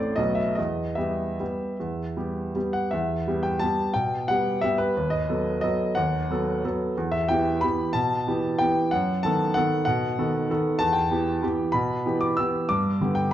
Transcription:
0.00 0.21 A1 medium
0.00 0.14 A3 soft
0.00 0.14 C4 soft
0.00 0.14 A4 soft
0.00 0.21 C5 medium
0.00 0.16 D5 medium
0.16 0.56 B1 medium
0.16 0.53 A3 soft
0.16 0.53 B3 soft
0.16 0.54 F#4 soft
0.16 0.36 D#5 medium
0.35 0.56 E5 medium
0.55 0.97 E2 soft
0.55 0.97 D#5 medium
0.95 1.36 G3 soft
0.95 1.36 B3 soft
0.95 1.36 G4 soft
0.95 2.54 E5 medium
1.40 1.76 G3 soft
1.40 1.76 B3 soft
1.40 1.76 G4 soft
1.80 2.16 E2 soft
2.17 2.51 G3 soft
2.17 2.51 B3 soft
2.17 2.52 G4 soft
2.55 2.90 G3 soft
2.55 2.90 B3 soft
2.55 2.90 G4 soft
2.73 2.92 F#5 medium
2.91 3.26 E2 medium
2.91 3.43 E5 medium
3.27 3.58 G3 soft
3.27 3.59 B3 soft
3.27 3.59 G4 soft
3.43 3.61 G5 medium
3.59 3.92 G3 soft
3.59 3.92 B3 soft
3.59 3.93 G4 soft
3.59 3.94 A5 medium
3.94 4.28 B2 soft
3.94 4.28 G5 medium
4.28 4.60 G3 soft
4.28 4.60 B3 soft
4.28 4.61 G4 soft
4.28 4.62 F#5 medium
4.61 4.92 G3 soft
4.61 4.93 B3 soft
4.61 4.93 G4 soft
4.61 4.79 E5 medium
4.78 5.11 B4 medium
4.97 5.28 D#2 medium
5.10 5.60 D#5 medium
5.29 5.60 F#3 soft
5.29 5.60 B3 soft
5.29 5.60 A4 soft
5.61 5.93 F#3 soft
5.61 5.93 B3 soft
5.61 5.94 A4 soft
5.61 5.96 D#5 medium
5.95 6.29 D#2 medium
5.95 6.63 F#5 medium
6.30 6.61 F#3 soft
6.30 6.61 B3 soft
6.30 6.61 A4 soft
6.64 6.94 F#3 soft
6.64 6.94 B3 soft
6.64 6.95 A4 medium
6.97 7.29 E2 medium
7.12 7.29 E5 medium
7.28 7.60 E3 soft
7.28 7.60 B3 soft
7.28 7.60 G4 soft
7.28 7.62 G5 medium
7.61 7.92 E3 soft
7.61 7.92 B3 soft
7.61 7.92 G4 soft
7.61 7.94 B5 medium
7.93 8.26 B2 medium
7.93 8.59 A5 medium
8.27 8.57 E3 soft
8.27 8.57 B3 soft
8.27 8.57 G4 medium
8.59 8.90 E3 soft
8.59 8.90 B3 soft
8.59 8.90 G4 soft
8.59 8.92 G5 medium
8.91 9.23 F#2 medium
8.91 9.23 F#5 medium
9.23 9.53 D#3 soft
9.23 9.53 B3 soft
9.23 9.53 A4 medium
9.23 9.55 A5 medium
9.54 9.84 D#3 soft
9.54 9.84 B3 soft
9.54 9.85 A4 medium
9.54 9.84 F#5 medium
9.85 10.17 B2 medium
9.85 10.79 F#5 medium
10.18 10.47 D#3 soft
10.18 10.47 B3 soft
10.18 10.47 A4 soft
10.50 10.78 D#3 medium
10.50 10.78 B3 soft
10.50 10.78 A4 medium
10.79 11.10 E2 medium
10.79 10.95 A5 loud
10.93 11.73 G5 medium
11.11 11.40 E3 soft
11.11 11.40 B3 soft
11.11 11.40 G4 medium
11.43 11.71 E3 soft
11.43 11.71 B3 soft
11.43 11.72 G4 medium
11.72 12.04 B2 medium
11.72 12.20 B5 medium
12.06 12.35 E3 soft
12.06 12.35 B3 soft
12.06 12.35 G4 soft
12.21 12.37 D6 medium
12.37 12.67 E3 soft
12.37 12.68 B3 soft
12.37 12.68 G4 soft
12.37 12.70 E6 medium
12.69 13.00 G2 medium
12.69 13.16 D6 medium
13.01 13.30 D3 soft
13.01 13.30 B3 soft
13.01 13.30 G4 soft
13.15 13.32 G5 medium

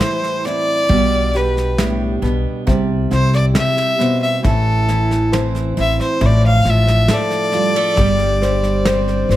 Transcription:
0.00 0.90 A2 medium
0.00 0.89 E3 soft
0.00 0.90 G3 medium
0.00 0.89 E4 medium
0.00 0.46 E4 medium
0.00 0.46 C5 medium
0.00 snare medium
0.23 snare soft
0.45 0.98 C4 medium
0.45 0.90 E4 medium
0.45 1.38 D5 loud
0.45 snare soft
0.89 2.19 B1 medium
0.89 1.78 B2 medium
0.89 1.32 G3 medium
0.89 1.78 D4 medium
0.89 kick medium
0.89 snare soft
1.34 1.78 G3 medium
1.34 2.62 G4 soft
1.34 1.80 B4 medium
1.34 snare soft
1.57 snare soft
1.78 2.22 A2 medium
1.78 2.66 G3 soft
1.78 2.21 B3 medium
1.78 2.77 D4 medium
1.78 snare medium
2.22 2.43 B1 medium
2.22 2.66 B2 medium
2.22 2.76 B3 medium
2.22 snare soft
2.67 3.09 C2 medium
2.67 3.52 C3 medium
2.67 3.55 G3 medium
2.67 kick medium
2.67 snare soft
3.11 3.53 C2 medium
3.11 4.44 E4 medium
3.11 4.39 G4 medium
3.11 3.33 C5 medium
3.11 snare soft
3.33 3.45 D5 medium
3.33 snare soft
3.54 3.98 C3 medium
3.54 4.44 G3 medium
3.54 snare medium
3.58 4.20 E5 loud
3.77 snare soft
3.98 4.42 B2 medium
3.98 4.53 C4 medium
3.98 snare soft
4.23 4.43 E5 medium
4.43 5.73 A1 medium
4.43 6.19 A2 medium
4.43 4.88 E3 medium
4.43 5.33 E4 medium
4.43 5.30 A4 medium
4.43 kick medium
4.43 snare soft
4.88 5.32 E3 medium
4.88 5.76 E4 medium
4.88 snare soft
5.11 snare soft
5.32 6.21 E3 medium
5.32 5.76 C4 medium
5.32 6.31 E4 medium
5.32 6.16 C5 medium
5.32 snare medium
5.55 snare soft
5.77 5.98 A1 medium
5.77 6.30 C4 medium
5.77 6.21 E4 medium
5.77 6.00 E5 medium
5.77 snare soft
6.00 6.27 C5 medium
6.00 snare soft
6.21 6.63 A1 loud
6.21 7.98 A2 medium
6.21 7.08 F3 medium
6.21 kick medium
6.21 snare soft
6.26 6.46 D5 medium
6.47 6.71 F5 loud
6.65 7.07 A1 medium
6.65 7.97 D4 medium
6.65 7.53 F4 medium
6.65 snare soft
6.70 7.15 E5 medium
6.87 snare soft
7.08 7.98 F3 medium
7.08 7.99 A4 medium
7.08 snare medium
7.14 9.33 D5 loud
7.30 snare soft
7.52 7.76 G3 medium
7.52 7.93 F4 soft
7.52 snare soft
7.75 8.07 A3 soft
7.75 snare soft
7.96 9.26 G1 loud
7.96 9.37 G3 medium
7.96 8.42 G3 medium
7.96 8.87 D4 medium
7.96 kick medium
7.96 snare soft
8.19 snare soft
8.42 8.86 G3 medium
8.42 8.85 C5 medium
8.42 snare soft
8.63 snare soft
8.85 9.37 G3 medium
8.85 9.30 C4 medium
8.85 9.37 D4 medium
8.85 9.29 C5 medium
8.85 snare medium
9.08 snare soft
9.29 9.37 G1 medium
9.29 9.37 C4 medium
9.29 9.37 C5 medium
9.29 snare soft

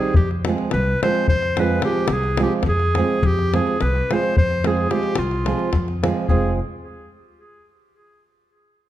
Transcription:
0.00 0.12 D#3 medium
0.00 0.12 G3 medium
0.00 0.12 C4 medium
0.00 0.13 D#4 medium
0.00 0.13 G4 medium
0.00 0.15 G#4 medium
0.14 0.50 F2 medium
0.14 0.30 G4 medium
0.14 davul low loud
0.31 davul high soft
0.45 0.69 F3 medium
0.45 0.69 G#3 medium
0.45 0.69 C4 medium
0.45 0.69 F4 medium
0.45 0.69 G#4 medium
0.45 davul high medium
0.58 davul high soft
0.71 0.92 C2 loud
0.71 1.01 B4 medium
0.71 davul high medium
1.03 1.25 F3 medium
1.03 1.26 G#3 medium
1.03 1.26 C4 medium
1.03 1.26 F4 medium
1.03 1.26 G#4 medium
1.03 1.28 C5 loud
1.03 davul high medium
1.15 davul high soft
1.28 1.78 F2 medium
1.28 1.62 C5 loud
1.28 davul low medium
1.42 davul high soft
1.57 1.80 F3 medium
1.57 1.80 G#3 medium
1.57 1.80 C4 medium
1.57 1.80 F4 medium
1.57 1.81 G#4 medium
1.57 1.84 B4 medium
1.57 davul high medium
1.82 2.05 F3 medium
1.82 2.05 G#3 medium
1.82 2.06 C4 soft
1.82 2.06 F4 medium
1.82 2.15 G4 loud
1.82 2.06 G#4 medium
1.82 davul high medium
2.08 2.43 C2 medium
2.08 davul high medium
2.13 2.42 G#4 loud
2.23 davul high soft
2.37 2.61 F3 medium
2.37 2.61 G#3 medium
2.37 2.62 C4 medium
2.37 2.62 F4 medium
2.37 2.62 G#4 medium
2.37 davul high medium
2.43 2.54 G4 medium
2.63 3.00 F2 medium
2.63 davul high medium
2.63 davul low medium
2.69 3.28 G#4 loud
2.80 davul high soft
2.95 3.18 F3 medium
2.95 3.19 G#3 medium
2.95 3.19 C4 medium
2.95 3.19 F4 medium
2.95 3.19 G#4 medium
2.95 davul high medium
3.23 3.57 F2 loud
3.23 3.57 G4 loud
3.23 davul low loud
3.39 davul high soft
3.53 3.75 F3 medium
3.53 3.75 G#3 medium
3.53 3.75 C4 medium
3.53 3.76 F4 medium
3.53 3.76 G#4 medium
3.53 3.83 G#4 medium
3.53 davul high medium
3.67 davul high soft
3.81 3.99 C2 loud
3.81 4.15 B4 medium
3.81 davul high medium
3.96 davul high soft
4.10 4.32 F3 medium
4.10 4.33 G#3 medium
4.10 4.33 C4 medium
4.10 4.33 F4 medium
4.10 4.33 G#4 medium
4.10 4.37 C5 medium
4.10 davul high medium
4.23 davul high soft
4.37 4.85 F2 medium
4.37 4.68 C5 loud
4.37 davul low medium
4.51 davul high soft
4.64 4.86 F3 medium
4.64 4.87 G#3 medium
4.64 4.87 C4 medium
4.64 4.87 F4 medium
4.64 4.93 G#4 medium
4.64 4.87 G#4 medium
4.64 davul high medium
4.77 davul high soft
4.91 5.12 F3 medium
4.91 5.12 G#3 medium
4.91 5.12 C4 soft
4.91 5.13 F4 medium
4.91 5.20 G4 loud
4.91 5.12 G#4 medium
4.91 davul high medium
5.03 davul high soft
5.15 5.51 C2 medium
5.15 6.04 F4 medium
5.15 davul high medium
5.31 davul high soft
5.46 5.68 F3 medium
5.46 5.69 G#3 medium
5.46 5.69 C4 medium
5.46 5.69 F4 medium
5.46 5.69 G#4 medium
5.46 davul high medium
5.59 davul high soft
5.73 6.08 F2 medium
5.73 davul high medium
5.73 davul low medium
5.88 davul high soft
6.03 6.25 F3 medium
6.03 6.25 G#3 medium
6.03 6.25 C4 medium
6.03 6.25 F4 medium
6.03 6.26 G#4 medium
6.03 davul high medium
6.28 6.58 F1 medium
6.28 6.59 G#3 medium
6.28 6.58 C4 medium
6.28 6.58 F4 medium
6.28 6.57 G#4 medium
6.28 6.59 G#4 medium
6.28 davul low medium

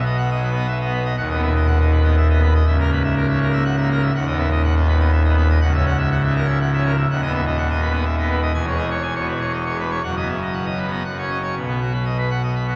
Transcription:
0.00 1.13 B1 medium
0.00 1.13 B2 medium
0.06 0.17 D#5 medium
0.18 0.29 F#5 medium
0.30 0.42 D#5 medium
0.35 0.50 F#3 medium
0.44 0.55 B4 medium
0.51 0.66 B3 medium
0.56 0.67 D#5 medium
0.68 0.78 E5 medium
0.81 0.99 B3 medium
0.81 0.92 D#5 medium
0.93 1.04 B4 medium
1.05 1.16 D#5 medium
1.17 2.62 D#1 medium
1.17 2.62 D#2 medium
1.17 1.29 F#5 loud
1.30 1.41 D#5 medium
1.35 1.49 B3 medium
1.43 1.53 E5 medium
1.55 1.66 D#5 medium
1.67 1.78 F#5 medium
1.80 1.99 D#3 medium
1.80 1.91 D#5 medium
1.91 2.03 B4 medium
2.00 2.15 B3 medium
2.00 2.15 D#5 medium
2.17 2.28 E5 medium
2.30 2.48 B3 medium
2.30 2.41 D#5 medium
2.43 2.53 B4 medium
2.54 2.65 D#5 medium
2.66 4.10 C#1 medium
2.66 4.10 C#2 medium
2.66 2.77 E5 medium
2.79 2.90 A#4 medium
2.84 2.98 A#3 medium
2.92 3.02 B4 medium
3.04 3.15 E5 medium
3.16 3.27 A#4 medium
3.29 3.39 E5 medium
3.33 3.47 C#3 medium
3.41 3.52 A#4 medium
3.49 3.63 A#3 medium
3.53 3.64 E5 medium
3.65 3.75 F#5 medium
3.78 3.89 E5 medium
3.82 3.97 A#3 medium
3.91 4.01 A#4 medium
4.02 4.12 E5 medium
4.15 5.58 D#1 medium
4.15 5.58 D#2 medium
4.15 4.26 F#5 loud
4.27 4.38 D#5 medium
4.32 4.46 B3 medium
4.38 4.49 E5 medium
4.51 4.62 D#5 medium
4.64 4.74 F#5 medium
4.76 4.94 D#3 medium
4.76 4.87 D#5 medium
4.88 4.99 B4 medium
4.96 5.11 B3 medium
5.00 5.11 D#5 medium
5.12 5.23 E5 medium
5.24 5.35 D#5 medium
5.29 5.43 B3 medium
5.38 5.48 B4 medium
5.50 5.60 D#5 medium
5.62 7.04 C#1 loud
5.62 7.04 C#2 loud
5.62 5.72 F#5 loud
5.75 5.85 E5 medium
5.79 5.93 C#4 medium
5.87 5.97 F#5 medium
5.98 6.09 E5 medium
6.12 6.22 F#5 medium
6.24 6.42 C#3 medium
6.24 6.34 E5 medium
6.36 6.46 A#4 medium
6.44 6.58 C#4 medium
6.49 6.59 E5 medium
6.61 6.71 F#5 medium
6.74 6.84 E5 loud
6.78 6.91 C#4 medium
6.85 6.96 A#4 medium
6.98 7.08 E5 medium
7.11 8.52 D#1 loud
7.11 8.52 D#2 loud
7.11 7.21 F#5 loud
7.22 7.32 D#5 medium
7.27 7.40 B3 medium
7.35 7.44 E5 medium
7.46 7.56 D#5 medium
7.58 7.68 F#5 loud
7.70 7.88 D#3 medium
7.70 7.80 D#5 medium
7.82 7.92 B4 medium
7.90 8.04 B3 medium
7.90 8.04 D#5 medium
8.05 8.16 E5 medium
8.17 8.36 B3 medium
8.17 8.28 D#5 medium
8.30 8.41 B4 medium
8.42 8.53 D#5 medium
8.54 10.00 E1 loud
8.54 10.00 E2 loud
8.54 8.65 G#5 loud
8.66 8.85 G#3 medium
8.66 8.77 C#5 medium
8.79 8.89 D#5 medium
8.90 9.02 C#5 medium
9.02 9.14 G#5 loud
9.15 9.34 B2 medium
9.15 9.26 C#5 medium
9.28 9.39 B4 medium
9.36 9.51 G#3 medium
9.40 9.52 C#5 medium
9.53 9.64 D#5 medium
9.65 9.77 C#5 medium
9.70 9.85 G#3 medium
9.80 9.91 B4 medium
9.91 10.02 C#5 medium
10.04 11.03 F#1 medium
10.04 11.03 F#2 medium
10.04 10.15 F#5 loud
10.16 10.28 D#5 medium
10.21 10.36 B3 medium
10.29 10.40 E5 medium
10.42 10.54 D#5 medium
10.53 10.66 F#5 medium
10.66 10.78 D#5 medium
10.70 10.86 F#3 medium
10.78 10.91 B4 medium
10.87 11.03 B3 medium
10.87 11.03 D#5 medium
11.05 11.55 F#1 medium
11.05 11.55 F#2 medium
11.05 11.17 F#5 medium
11.18 11.30 C#5 medium
11.22 11.37 C#4 medium
11.30 11.41 D#5 soft
11.43 11.54 C#5 medium
11.55 12.76 B1 medium
11.55 12.76 B2 medium
11.68 11.80 B3 medium
11.81 11.92 F#4 medium
11.93 12.04 B4 medium
12.05 12.17 D#5 medium
12.18 12.30 B4 medium
12.31 12.42 F#5 medium
12.43 12.54 D#5 medium
12.55 12.67 B4 medium
12.67 12.76 F#4 medium

